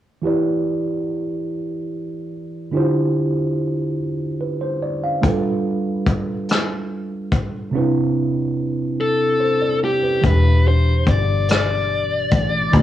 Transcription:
0.22 tine electric piano E3 E4 G4 B4
0.27 tine electric piano D5
2.71 tine electric piano D3 D4 E4 F4
2.76 tine electric piano G4 C5
4.41 tine electric piano B4
4.61 tine electric piano C5
4.83 tine electric piano D5
5.04 tine electric piano F5
5.22 tine electric piano G3 D4 F4 A4, kick, closed hi-hat
5.27 tine electric piano B4
6.07 kick, closed hi-hat
6.49 cross-stick, closed hi-hat
7.32 kick, closed hi-hat
7.71 tine electric piano C3 C4 D4
7.75 tine electric piano E4 B4
9.01 lead electric guitar A4
9.40 tine electric piano C5
9.62 tine electric piano D5
9.84 lead electric guitar G4
10.03 tine electric piano B4
10.21 fingered electric bass E1, tine electric piano B2 E3 D4 G4, kick, closed hi-hat
10.26 lead electric guitar B4, tine electric piano E5
10.68 lead electric guitar C5
11.07 fingered electric bass G1, lead electric guitar D5, kick, closed hi-hat
11.49 lead electric guitar D5, cross-stick, closed hi-hat
12.31 fingered electric bass A1, kick, closed hi-hat
12.71 fingered electric bass D2, tine electric piano D3 D4 F4 G4, kick, closed hi-hat
12.76 tine electric piano C5 D5, lead electric guitar E5

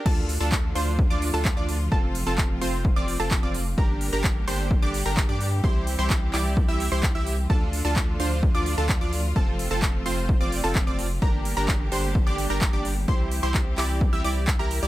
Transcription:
0.06 sub bass D2, string section D3 F3 A3 F4, supersaw synth D4 F4 A4, synth pluck A5, kick, crash
0.29 open hi-hat
0.41 sub bass D2, supersaw synth D4 F4 A4, synth pluck A5
0.52 kick, clap
0.75 sub bass D2, supersaw synth D4 F4 C5, synth pluck C6, open hi-hat
0.99 kick
1.10 sub bass D2, supersaw synth D4 F4 D5, synth pluck D6
1.22 open hi-hat
1.34 sub bass D2, supersaw synth D4 F4 A4, synth pluck A5
1.45 kick, clap
1.57 sub bass D2, supersaw synth D4 F4 D5, synth pluck D6
1.69 open hi-hat
1.92 sub bass F1, string section C3 A3, supersaw synth C4 F4 A4, synth pluck A5, kick
2.15 open hi-hat
2.27 sub bass F1, supersaw synth C4 F4 A4, synth pluck A5
2.38 kick, clap
2.62 sub bass F1, supersaw synth C4 F4 C5, synth pluck C6, open hi-hat
2.85 kick
2.96 sub bass F1, supersaw synth C4 F4 D5, synth pluck D6
3.08 open hi-hat
3.20 sub bass F1, supersaw synth C4 F4 A4, synth pluck A5
3.31 kick, clap
3.43 sub bass F1, supersaw synth C4 F4 D5, synth pluck D6
3.54 open hi-hat
3.78 sub bass G1, string section D3 G3 A#3 G4, supersaw synth D4 G4 A#4, synth pluck A#5, kick
4.01 open hi-hat
4.13 sub bass G1, supersaw synth D4 G4 A#4, synth pluck A#5
4.24 kick, clap
4.48 sub bass G1, supersaw synth D4 G4 C5, synth pluck C6, open hi-hat
4.71 kick
4.82 sub bass G1, supersaw synth D4 G4 D5, synth pluck D6
4.94 open hi-hat
5.06 sub bass G1, supersaw synth D4 G4 A#4, synth pluck A#5
5.17 kick, clap
5.29 sub bass G2, supersaw synth D4 G4 D5, synth pluck D6
5.41 open hi-hat
5.64 sub bass C2, string section E3 C4, supersaw synth E4 G4 C5, synth pluck C6, kick
5.87 open hi-hat
5.99 sub bass C2, supersaw synth E4 G4 C5, synth pluck C6
6.10 kick, clap
6.33 sub bass C2, supersaw synth E4 G4 D5, synth pluck D6, clap, open hi-hat
6.57 kick
6.68 sub bass C2, supersaw synth E4 G4 E5, synth pluck E6
6.80 open hi-hat
6.92 sub bass C2, supersaw synth E4 G4 C5, synth pluck C6
7.03 kick, clap
7.15 sub bass C2, supersaw synth E4 G4 E5, synth pluck E6
7.27 open hi-hat
7.50 sub bass D2, string section D3 F3 A3 F4, supersaw synth D4 F4 A4, synth pluck A5, kick
7.73 open hi-hat
7.85 sub bass D2, supersaw synth D4 F4 A4, synth pluck A5
7.96 kick, clap
8.20 sub bass D2, supersaw synth D4 F4 C5, synth pluck C6, open hi-hat
8.43 kick
8.55 sub bass D2, supersaw synth D4 F4 D5, synth pluck D6
8.66 open hi-hat
8.78 sub bass D2, supersaw synth D4 F4 A4, synth pluck A5
8.89 kick, clap
9.01 sub bass D2, supersaw synth D4 F4 D5, synth pluck D6
9.13 open hi-hat
9.36 sub bass F1, string section C3 A3, supersaw synth C4 F4 A4, synth pluck A5, kick
9.59 open hi-hat
9.71 sub bass F1, supersaw synth C4 F4 A4, synth pluck A5
9.82 kick, clap
10.06 sub bass F1, supersaw synth C4 F4 C5, synth pluck C6, open hi-hat
10.29 kick
10.41 sub bass F1, supersaw synth C4 F4 D5, synth pluck D6
10.52 open hi-hat
10.64 sub bass F1, supersaw synth C4 F4 A4, synth pluck A5
10.75 kick, clap
10.87 sub bass F1, supersaw synth C4 F4 D5, synth pluck D6
10.99 open hi-hat
11.22 sub bass G1, string section D3 G3 A#3 G4, supersaw synth D4 G4 A#4, synth pluck A#5, kick
11.45 open hi-hat
11.57 sub bass G1, supersaw synth D4 G4 A#4, synth pluck A#5
11.68 kick, clap
11.92 sub bass G1, supersaw synth D4 G4 C5, synth pluck C6, open hi-hat
12.15 kick
12.27 sub bass G1, supersaw synth D4 G4 D5, synth pluck D6
12.38 open hi-hat
12.50 sub bass G1, supersaw synth D4 G4 A#4, synth pluck A#5
12.61 kick, clap
12.73 sub bass G1, supersaw synth D4 G4 D5, synth pluck D6
12.85 open hi-hat
13.08 sub bass C2, string section E3 C4 G4, supersaw synth E4 G4 C5, synth pluck C6, kick
13.31 open hi-hat
13.43 sub bass C2, supersaw synth E4 G4 C5, synth pluck C6
13.54 kick, clap
13.78 sub bass C2, supersaw synth E4 G4 D5, synth pluck D6, clap, open hi-hat
14.01 kick
14.13 sub bass C2, supersaw synth E4 G4 E5, synth pluck E6
14.24 sub bass C2, supersaw synth E4 G4 D5, synth pluck D6, open hi-hat
14.47 kick, clap
14.59 sub bass C2, supersaw synth E4 G4 A#4, synth pluck A#5
14.71 open hi-hat
14.83 sub bass C2, supersaw synth E4 G4 D5, synth pluck D6

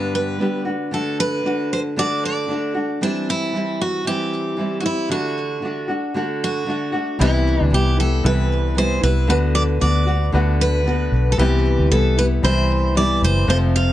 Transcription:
Already playing: nylon-string guitar G2 D3 G3 B3 D4 G4, steel-string acoustic guitar B4
0.15 steel-string acoustic guitar B4
0.39 nylon-string guitar G3 B3 D4 G4
0.65 nylon-string guitar A3 D4 F#4
0.91 nylon-string guitar D3 A3 D4 F#4, steel-string acoustic guitar A4
1.20 steel-string acoustic guitar B4
1.43 nylon-string guitar D3 A3 D4 F#4
1.73 steel-string acoustic guitar C5
1.96 nylon-string guitar D3 A3 D4 F#4, steel-string acoustic guitar D5
2.25 steel-string acoustic guitar D5
2.48 nylon-string guitar D3 A3 D4 F#4
2.75 nylon-string guitar A3 D4 F#4
3.01 nylon-string guitar E3 G3 C4 E4, steel-string acoustic guitar D4
3.30 steel-string acoustic guitar E4
3.53 nylon-string guitar E3 G3 C4 E4
3.81 steel-string acoustic guitar F#4
4.05 nylon-string guitar E3 G3 C4 E4, steel-string acoustic guitar G4
4.57 nylon-string guitar E3 G3 C4 E4
4.80 nylon-string guitar E4, steel-string acoustic guitar F#4
4.85 nylon-string guitar G3 C4, steel-string acoustic guitar E4
5.09 nylon-string guitar D3 A3 D4 F#4, steel-string acoustic guitar F#4
5.62 nylon-string guitar D3 A3 D4 F#4
5.88 nylon-string guitar A3 D4 F#4
6.14 nylon-string guitar D3 A3 D4 F#4
6.44 steel-string acoustic guitar F#4
6.66 nylon-string guitar D3 A3 D4 F#4
6.92 nylon-string guitar A3 D4 F#4
7.19 fingered electric bass C2, nylon-string guitar C3 E3 G3 B3 E4, grand piano G3 C4 E4 B4, steel-string acoustic guitar E4
7.61 fingered electric bass D2, steel-string acoustic guitar D4
7.70 fingered electric bass C2, nylon-string guitar E3 G3 B3 E4, steel-string acoustic guitar G4
7.97 nylon-string guitar G3 B3 E4, steel-string acoustic guitar A4
8.23 fingered electric bass C2, nylon-string guitar C3 E3 G3 B3 E4, grand piano G3 C4 E4 A4, steel-string acoustic guitar B4
8.75 nylon-string guitar E3 G3 B3 E4, steel-string acoustic guitar C5
9.01 fingered electric bass C2, nylon-string guitar G3 B3 E4, steel-string acoustic guitar B4
9.27 fingered electric bass D2, nylon-string guitar D3 A3 B3 F#4, grand piano A3 D4 F#4 B4, steel-string acoustic guitar B4
9.55 steel-string acoustic guitar D5
9.80 fingered electric bass D2, nylon-string guitar D3 A3 B3 F#4, steel-string acoustic guitar D5
10.06 nylon-string guitar A3 B3 F#4
10.32 fingered electric bass D2, nylon-string guitar D3 A3 B3 F#4, grand piano A3 D4 F#4 B4
10.61 steel-string acoustic guitar B4
10.84 nylon-string guitar D3 A3 B3 F#4
11.12 fingered electric bass B1
11.32 steel-string acoustic guitar A4
11.37 fingered electric bass C2, nylon-string guitar C3 E3 G3 B3 E4, grand piano G3 C4 E4 B4, steel-string acoustic guitar G4
11.79 fingered electric bass D2
11.90 fingered electric bass C2, nylon-string guitar E3 G3 B3 E4, steel-string acoustic guitar A4
12.17 nylon-string guitar G3 B3 E4, steel-string acoustic guitar B4
12.42 fingered electric bass C2, nylon-string guitar C3 E3 G3 E4, grand piano G3 C4 E4 B5, steel-string acoustic guitar C5
12.95 nylon-string guitar E3 G3 B3 E4, steel-string acoustic guitar D5
13.22 fingered electric bass F#1, steel-string acoustic guitar C5
13.47 fingered electric bass F1, nylon-string guitar F2 C3 F3 A3 C4 F4, grand piano A3 C4 F4 C5, steel-string acoustic guitar C5
13.76 steel-string acoustic guitar F5

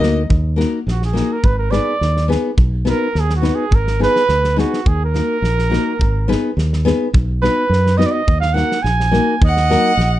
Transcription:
Already playing: trumpet A#3, violin D#5
0.00 fingered electric bass D2, nylon-string guitar A#3 D#4 F#4 A#4, snare
0.30 fingered electric bass D#2, kick
0.56 nylon-string guitar A#3 D#4 F#4 A#4, snare
0.87 fingered electric bass A#1, snare
0.91 trumpet F#4
1.02 trumpet G#4, snare
1.13 nylon-string guitar A#3 D#4 F#4 A#4, snare
1.33 trumpet A#4
1.44 fingered electric bass G#1, trumpet B4, kick
1.59 trumpet A#4
1.70 nylon-string guitar B3 D#4 G#4 B4, trumpet D5, snare
2.01 fingered electric bass D#2, snare
2.17 snare
2.28 nylon-string guitar B3 D#4 G#4 B4, snare
2.57 fingered electric bass B1, kick
2.85 nylon-string guitar B3 D#4 F#4 B4, snare
2.90 trumpet A#4
3.15 fingered electric bass D#2, snare
3.19 trumpet G#4
3.30 snare
3.36 trumpet F#4
3.41 nylon-string guitar B3 D#4 F#4 B4, snare
3.55 trumpet G#4
3.71 fingered electric bass G#1, trumpet A#4, kick
3.87 snare
3.99 nylon-string guitar B3 D#4 G#4 B4, trumpet B4, snare
4.16 snare
4.29 fingered electric bass D2, snare
4.44 snare
4.56 nylon-string guitar B3 D#4 G#4 B4, trumpet F#4, snare
4.73 snare
4.86 fingered electric bass D#2, trumpet G#4, kick
5.05 trumpet A#4
5.14 nylon-string guitar A#3 D#4 F#4 A#4, snare
5.42 fingered electric bass A#1, snare
5.59 snare
5.70 nylon-string guitar A#3 D#4 F#4 A#4, snare
5.99 fingered electric bass G#1, kick
6.28 nylon-string guitar B3 D#4 G#4 B4, snare
6.57 fingered electric bass D#2, snare
6.73 snare
6.85 nylon-string guitar B3 D#4 G#4 B4, snare
7.13 fingered electric bass B1, kick
7.41 nylon-string guitar B3 D#4 F#4 B4, trumpet B4, snare
7.69 fingered electric bass F#2, snare
7.87 snare
7.97 nylon-string guitar B3 D#4 F#4 B4, trumpet D#5, snare
8.06 trumpet D5
8.11 trumpet D#5
8.27 fingered electric bass D#2, kick
8.40 trumpet F5, snare
8.54 nylon-string guitar A#3 D#4 F#4 A#4, trumpet F#5, snare
8.72 snare
8.83 fingered electric bass A#1, trumpet G#5, snare
9.00 snare
9.11 nylon-string guitar A#3 D#4 F#4 A#4, snare
9.41 fingered electric bass D#2, trumpet D#5, kick
9.46 violin F#5
9.57 snare
9.70 nylon-string guitar F#3 A#3 D#4 F#4 A#4, snare
9.97 fingered electric bass A#1, snare

